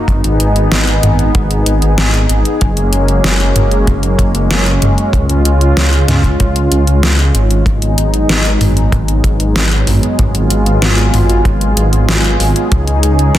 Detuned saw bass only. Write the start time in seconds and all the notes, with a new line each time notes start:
0.08 G#1
0.24 G#1
0.40 G#1
0.72 G#1
1.03 G#1
1.35 G#1
1.66 G#1
1.82 G#1
1.98 G#1
2.29 G#1
2.62 F#1
2.77 F#1
2.92 F#1
3.24 F#1
3.56 F#1
3.87 F#1
4.19 F#1
4.35 F#1
4.50 F#1
4.82 F#1
5.13 C#2
5.29 C#2
5.45 C#2
5.77 C#2
6.08 C#2
6.40 C#2
6.72 C#2
6.87 C#2
7.03 C#2
7.35 G#1
7.66 G#1
7.82 G#1
7.98 G#1
8.29 G#1
8.61 G#1
8.92 G#1
9.24 G#1
9.40 G#1
9.56 G#1
9.87 G#1
10.19 G#1
10.35 G#1
10.50 G#1
10.82 G#1
11.14 G#1
11.45 G#1
11.77 G#1
11.93 G#1
12.08 G#1
12.40 G#1
12.72 C#2
12.87 C#2
13.03 C#2
13.35 C#2